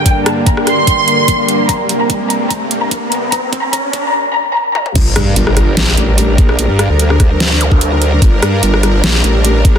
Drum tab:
CC |----------------|----------------|----------------|x---------------|
HH |x-x-x-x-x-x-x-x-|x-x-x-x-x-x-x-x-|x-x-x-x---------|x-x-x-x-x-x-x-x-|
SD |--r--rr---------|----------------|----------------|--r--rr-o------r|
T1 |----------------|----------------|--------------o-|----------------|
T2 |----------------|----------------|---------------o|----------------|
BD |o---o---o---o---|o---o---o---o---|o-o-o-o---------|o-------------o-|

CC |----------------|----------------|
HH |x-x-x-x-x-x-x-x-|x-x-x-x-x-x-x-x-|
SD |--r--rr-o-------|--r--rr-o-------|
T1 |----------------|----------------|
T2 |----------------|----------------|
BD |------o----o----|o-------------o-|